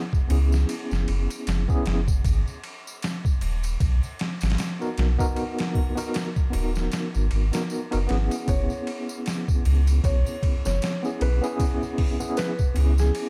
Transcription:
0.13 kick medium
0.13 tambourine soft
0.27 0.65 C#2 medium
0.27 1.62 B3 medium
0.27 1.63 C#4 medium
0.27 1.64 E4 medium
0.27 ride medium
0.27 triangle medium
0.32 1.65 G#4 medium
0.52 snare soft
0.52 tambourine medium
0.69 ride medium
0.69 tambourine medium
0.91 1.06 F#1 medium
0.91 snare soft
0.91 tambourine soft
1.08 1.27 F#1 loud
1.08 ride medium
1.30 ride soft
1.30 tambourine medium
1.47 1.66 F#1 medium
1.47 snare loud
1.47 ride medium
1.47 tambourine medium
1.68 1.98 B3 medium
1.68 1.98 C#4 medium
1.68 1.99 E4 medium
1.68 1.99 G#4 loud
1.68 kick medium
1.68 tambourine soft
1.86 2.21 F#1 medium
1.86 snare loud
1.86 ride medium
2.08 kick medium
2.08 tambourine medium
2.24 2.44 G#1 loud
2.24 kick medium
2.24 ride medium
2.24 tambourine medium
2.48 tambourine soft
2.64 ride medium
2.87 tambourine medium
3.02 snare loud
3.02 ride medium
3.02 tambourine medium
3.25 kick medium
3.25 tambourine soft
3.41 3.76 D#1 medium
3.41 ride medium
3.41 triangle medium
3.63 ride soft
3.63 tambourine medium
3.80 4.00 B1 medium
3.80 kick loud
3.80 ride medium
3.80 tambourine medium
4.03 tambourine soft
4.03 triangle soft
4.19 snare loud
4.19 ride medium
4.41 4.57 G#1 medium
4.41 snare medium
4.41 ride medium
4.41 tambourine medium
4.50 snare medium
4.50 ride medium
4.58 snare loud
4.58 ride medium
4.58 tambourine medium
4.79 5.14 B3 medium
4.79 5.14 D#4 medium
4.79 5.14 F#4 medium
4.79 5.15 A#4 medium
4.79 tambourine soft
4.98 5.17 B1 medium
4.98 snare loud
4.98 ride medium
5.18 5.91 B3 medium
5.18 5.92 D#4 medium
5.18 5.92 F#4 medium
5.18 5.93 A#4 medium
5.18 kick medium
5.18 tambourine medium
5.36 ride medium
5.36 tambourine medium
5.59 snare loud
5.59 ride medium
5.59 tambourine soft
5.75 kick medium
5.75 triangle medium
5.95 6.26 B3 medium
5.95 6.27 D#4 medium
5.95 6.27 F#4 medium
5.95 6.27 A#4 medium
5.95 ride medium
5.95 tambourine medium
6.14 snare loud
6.14 ride medium
6.14 tambourine medium
6.36 kick medium
6.36 tambourine soft
6.50 6.88 D#1 medium
6.50 7.47 B3 medium
6.50 7.48 D#4 medium
6.50 7.49 F#4 medium
6.50 ride medium
6.50 triangle medium
6.55 7.50 A#4 medium
6.75 snare soft
6.75 tambourine medium
6.92 snare loud
6.92 ride medium
6.92 tambourine medium
7.14 7.29 G#1 medium
7.14 tambourine soft
7.31 7.51 G#1 loud
7.31 ride medium
7.51 7.86 B3 medium
7.51 7.86 D#4 medium
7.51 7.87 F#4 medium
7.51 7.87 A#4 medium
7.51 snare medium
7.51 ride medium
7.51 tambourine medium
7.70 tambourine medium
7.91 8.07 F#1 loud
7.91 8.05 B3 medium
7.91 8.06 D#4 medium
7.91 8.06 F#4 medium
7.91 8.07 A#4 medium
7.91 ride medium
7.91 tambourine soft
8.06 8.29 G#1 medium
8.06 10.97 B3 medium
8.06 10.98 C#4 medium
8.06 10.99 E4 medium
8.06 ride medium
8.11 11.00 G#4 medium
8.11 snare soft
8.31 ride soft
8.31 tambourine medium
8.48 8.68 F#1 loud
8.48 9.20 C#5 medium
8.48 kick loud
8.48 ride medium
8.48 tambourine medium
8.70 tambourine soft
8.87 ride medium
9.09 tambourine medium
9.26 snare loud
9.26 ride medium
9.26 tambourine medium
9.48 kick medium
9.48 tambourine soft
9.65 10.00 C#2 medium
9.65 ride medium
9.65 triangle medium
9.87 ride soft
9.87 tambourine medium
10.04 10.24 B1 medium
10.04 10.59 C#5 medium
10.04 kick loud
10.04 ride medium
10.04 tambourine medium
10.26 tambourine soft
10.26 triangle medium
10.43 kick medium
10.43 ride medium
10.65 10.80 F#1 medium
10.65 11.16 C#5 medium
10.65 snare soft
10.65 tambourine medium
10.82 snare loud
10.82 ride medium
10.82 tambourine medium
11.03 11.37 B3 medium
11.03 11.37 C#4 medium
11.03 11.38 E4 medium
11.03 11.38 G#4 medium
11.03 tambourine soft
11.21 11.40 B1 medium
11.21 11.76 B4 medium
11.21 ride medium
11.42 12.15 B3 medium
11.42 12.15 C#4 medium
11.42 12.16 E4 medium
11.42 12.16 G#4 loud
11.42 tambourine medium
11.59 kick loud
11.59 ride medium
11.59 tambourine medium
11.83 tambourine soft
11.98 kick medium
11.98 open hi-hat medium
12.20 12.50 B3 medium
12.20 12.50 C#4 medium
12.20 12.51 E4 medium
12.20 12.51 G#4 loud
12.20 tambourine medium
12.37 12.92 B4 medium
12.37 snare loud
12.37 ride medium
12.37 tambourine medium
12.59 kick medium
12.59 tambourine soft
12.75 13.11 C#2 medium
12.75 13.29 B3 medium
12.75 13.29 C#4 medium
12.75 13.29 E4 medium
12.75 ride medium
12.75 triangle medium
12.79 13.29 G#4 medium
12.98 13.29 G#4 medium
12.98 snare soft
12.98 tambourine medium
13.15 ride medium
13.15 tambourine medium

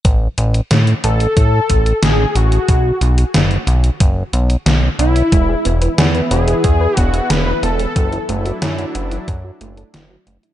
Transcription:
0.05 0.28 A1 loud
0.05 kick loud
0.05 closed hi-hat medium
0.38 0.61 A1 medium
0.38 closed hi-hat medium
0.54 closed hi-hat medium
0.71 0.94 A2 medium
0.71 snare loud
0.71 closed hi-hat medium
0.87 closed hi-hat soft
1.04 1.27 A1 medium
1.04 1.99 A4 loud
1.04 closed hi-hat medium
1.20 closed hi-hat soft
1.37 1.60 A2 loud
1.37 kick loud
1.37 closed hi-hat medium
1.70 1.93 A1 medium
1.70 kick medium
1.70 closed hi-hat medium
1.86 closed hi-hat medium
2.03 2.26 A1 medium
2.03 2.38 G#4 loud
2.03 snare loud
2.03 closed hi-hat medium
2.35 2.59 A1 medium
2.35 3.35 F#4 loud
2.35 closed hi-hat medium
2.52 closed hi-hat medium
2.68 2.92 B1 loud
2.68 kick loud
2.68 closed hi-hat medium
3.01 3.25 B1 loud
3.01 closed hi-hat medium
3.18 closed hi-hat medium
3.34 3.58 F#1 medium
3.34 snare loud
3.34 closed hi-hat medium
3.51 closed hi-hat soft
3.67 3.91 B1 loud
3.67 closed hi-hat medium
3.84 closed hi-hat medium
4.00 4.24 F#1 loud
4.00 kick loud
4.00 closed hi-hat medium
4.33 4.56 B1 medium
4.33 closed hi-hat medium
4.50 closed hi-hat medium
4.66 4.89 B1 medium
4.66 snare loud
4.66 closed hi-hat medium
4.99 5.22 B1 medium
4.99 5.94 E4 loud
4.99 closed hi-hat medium
5.16 closed hi-hat medium
5.32 5.56 E1 loud
5.32 7.93 E3 medium
5.32 5.44 G#3 medium
5.32 7.93 B3 medium
5.32 7.93 E4 medium
5.32 kick loud
5.32 closed hi-hat medium
5.49 5.60 G#4 medium
5.65 5.88 E1 loud
5.65 5.77 B3 medium
5.65 closed hi-hat medium
5.82 5.93 B4 medium
5.82 closed hi-hat medium
5.98 6.21 E2 medium
5.98 6.05 G#4 medium
5.98 snare loud
5.98 closed hi-hat medium
6.15 6.30 B4 medium
6.15 closed hi-hat soft
6.31 6.54 E1 medium
6.31 6.99 G#4 loud
6.31 6.43 B4 medium
6.31 closed hi-hat medium
6.48 6.54 G#4 medium
6.48 closed hi-hat medium
6.64 6.87 E2 loud
6.64 6.75 E5 medium
6.64 kick loud
6.64 closed hi-hat medium
6.81 6.92 B4 loud
6.97 7.20 E1 medium
6.97 7.08 B3 medium
6.97 7.32 F#4 loud
6.97 kick medium
6.97 closed hi-hat medium
7.14 7.25 E5 medium
7.14 closed hi-hat medium
7.30 7.53 E1 medium
7.30 7.41 G#4 medium
7.30 7.63 B4 loud
7.30 snare loud
7.30 closed hi-hat medium
7.47 7.62 B4 medium
7.63 7.86 E1 medium
7.63 7.74 B3 medium
7.63 8.58 A4 loud
7.63 closed hi-hat medium
7.79 7.87 G#4 medium
7.79 closed hi-hat medium
7.96 8.19 F#1 loud
7.96 10.54 F#3 medium
7.96 8.07 F#3 medium
7.96 10.54 D4 medium
7.96 10.54 E4 medium
7.96 kick loud
7.96 closed hi-hat medium
8.13 8.24 E4 medium
8.13 closed hi-hat soft
8.29 8.52 F#1 loud
8.29 8.41 A3 medium
8.29 closed hi-hat medium
8.46 8.57 F#4 medium
8.46 closed hi-hat medium
8.62 8.85 F#2 medium
8.62 8.69 E4 medium
8.62 snare loud
8.62 closed hi-hat medium
8.78 8.94 F#4 medium
8.78 closed hi-hat soft
8.95 9.18 F#1 medium
8.95 9.06 F#4 medium
8.95 closed hi-hat medium
9.11 9.18 E4 medium
9.11 closed hi-hat medium
9.28 9.51 F#2 loud
9.28 9.39 A4 medium
9.28 kick loud
9.28 closed hi-hat medium
9.44 9.56 F#4 loud
9.61 9.84 F#1 medium
9.61 9.72 A3 medium
9.61 closed hi-hat medium
9.77 9.89 A4 medium
9.77 closed hi-hat soft
9.94 10.17 F#1 loud
9.94 10.05 E4 medium
9.94 snare loud
9.94 closed hi-hat medium
10.10 10.26 F#4 medium
10.27 10.38 F#1 medium
10.27 10.38 A3 medium
10.27 closed hi-hat medium
10.43 10.50 E4 medium
10.43 closed hi-hat medium

